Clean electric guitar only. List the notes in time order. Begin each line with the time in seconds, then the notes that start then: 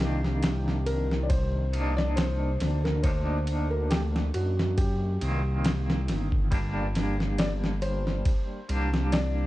Already playing: D#3 A#3 D4
1.73 A#3 D4 D#4
3.04 A#3 D4 D#4
5.21 D#3 A#3 C4
6.51 G3 A#3 D4
8.69 G3 A#3 D4